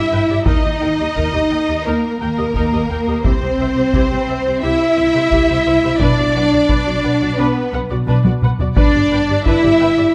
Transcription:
Already playing: E4 E5
0.10 G2 B4 G5
0.29 G2 G4 D5
0.45 D#2 D#4 A#4 D#5, taiko
0.64 D#2 G4 D#5
0.82 D#2 A#4 G5
0.99 D#2 G4 D#5
1.15 D#2 D#4 A#4, taiko
1.33 D#2 G4 D#5
1.51 D#2 A#4 G5
1.68 D#2 G4 D#5
1.85 D#2 A#3 D#4 A#4
2.20 D#2 A#3 A#4 G5
2.37 D#2 G4 D#5
2.54 D#2 D#4 A#4, taiko
2.73 D#2 G4 D#5
2.90 D#2 A#4 G5
3.07 D#2 G4 D#5
3.24 C2 C4 E4 G4 C5, taiko
3.42 C2 G4 C5
3.59 C2 C5 E5
3.76 C2 G4 C5
3.92 C2 E4 G4, taiko
4.09 C2 G4 C5
4.28 C2 C5 E5
4.45 C2 G4 C5
4.62 C2 E4 G4 E5
4.97 C2 C5 E5
5.14 C2 G4 C5
5.30 C2 E4 G4, taiko
5.48 C2 G4 C5
5.66 C2 C5 E5
5.83 C2 G4 C5
5.99 B1 D4 B4 D5, taiko
6.18 B1 F#4 D5
6.35 B1 B4 F#5
6.52 B1 F#4 D5
6.69 B1 D4 B4, taiko
6.86 B1 F#4 D5
7.04 B1 B4 F#5
7.21 B1 F#4 D5
7.37 B1 B3 D4 B4
7.73 B1 B4 F#5
7.90 B1 F#4 D5
8.07 B1 D4 B4, taiko high
8.24 B1 F#4 D5, taiko high
8.42 B1 B4 F#5, taiko mid
8.59 B1 F#4 D5, taiko low
8.76 G1 D4 B4 D5, taiko
8.94 G1 G4 D5
9.11 G1 B4 G5
9.29 G1 G4 D5
9.46 G1 D4 E4 B4 E5, taiko
9.62 G1 G4 D5
9.80 G1 B4 G5
9.97 G1 G4 D5

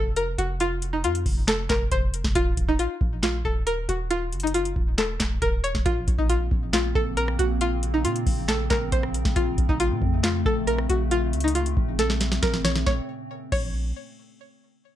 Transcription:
Already playing: F1 A4
0.16 A#4, closed hi-hat
0.38 F1 F#4, closed hi-hat
0.60 F4, closed hi-hat
0.82 closed hi-hat
0.93 D#4
1.04 F2 F4, closed hi-hat
1.15 closed hi-hat
1.26 F1, kick, open hi-hat
1.48 A4, snare, clap, closed hi-hat
1.69 F1 A#4, kick, snare, clap, closed hi-hat
1.92 F1 C5, kick, closed hi-hat
2.14 closed hi-hat
2.24 F1, kick, snare
2.35 D#1 F4, kick, closed hi-hat
2.57 D#1, kick, closed hi-hat
2.68 D#4, kick
2.79 F4, closed hi-hat
3.01 A#1, kick
3.23 F4, snare, clap, closed hi-hat
3.45 D#1 A4, kick
3.67 A#4, closed hi-hat
3.89 D#1 F#4, closed hi-hat
4.11 F4, closed hi-hat
4.33 F#1, closed hi-hat
4.40 D#4, closed hi-hat
4.47 closed hi-hat
4.54 F4, closed hi-hat
4.65 closed hi-hat
4.76 D#1, kick
4.98 A4, snare, clap, closed hi-hat
5.20 D#1, kick, snare, clap, closed hi-hat
5.42 D#1 A#4, kick, closed hi-hat
5.64 C#5, closed hi-hat
5.75 D#1, kick, snare
5.86 A#1 C#3 A#3 C4 F4, kick, closed hi-hat
6.08 A#1, kick, closed hi-hat
6.18 D#4, kick
6.29 F4, closed hi-hat
6.51 A#1, kick
6.73 F4, snare, clap, closed hi-hat
6.95 A#1 A4, kick
7.17 A#4, closed hi-hat
7.28 cross-stick
7.39 A#1 F#4, closed hi-hat
7.61 F4, closed hi-hat
7.83 closed hi-hat
7.94 D#4
8.05 A#2 F4, closed hi-hat
8.16 closed hi-hat
8.27 A#1, kick, open hi-hat
8.48 A4, snare, clap, closed hi-hat
8.70 A#1 A#4, kick, snare, clap, closed hi-hat
8.92 A#1 C5, kick, closed hi-hat
9.03 cross-stick
9.14 closed hi-hat
9.25 A#1, kick, snare
9.36 A#1 A3 F4, kick, closed hi-hat
9.58 A#1, kick, closed hi-hat
9.69 A#1 D#4, kick
9.80 F4, closed hi-hat
9.91 A#2
10.02 F2, kick
10.24 F4, snare, clap, closed hi-hat
10.46 A#1 A4, kick
10.67 A#4, closed hi-hat
10.78 cross-stick
10.89 A#1 F#4, closed hi-hat
11.11 F4, closed hi-hat
11.33 C#2, closed hi-hat
11.40 D#4, closed hi-hat
11.48 closed hi-hat
11.55 F4, closed hi-hat
11.66 closed hi-hat
11.77 A#1, kick
11.99 A4, snare, closed hi-hat
12.10 snare
12.21 snare, closed hi-hat
12.32 snare
12.43 A#1 A#4, kick, snare, closed hi-hat
12.54 snare
12.64 C#5, snare, closed hi-hat
12.76 snare
12.86 A#1 C#5, kick, snare
13.52 A#1 C#5, kick, crash

